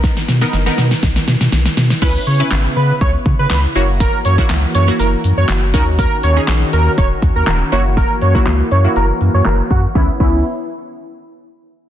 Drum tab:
CC |----------------|x---------------|----------------|----------------|
HH |----------------|----------------|x-x-x-x-x-x-x-x-|x-x-x-x-x-x-x-x-|
CP |----------------|----x-------x---|----x-------x---|----x-------x---|
SD |oooooooooooooooo|----o-------o---|----o-------o---|----o-------o---|
BD |o-------o-------|o-------o-o-----|o--o----------o-|o-------o-o-----|

CC |----------------|--x-------------|
HH |x-x-x-x-x-x-x-x-|----------------|
CP |----x-------x---|----------------|
SD |----o-------o---|o---------------|
BD |o--o----------o-|o-o-------------|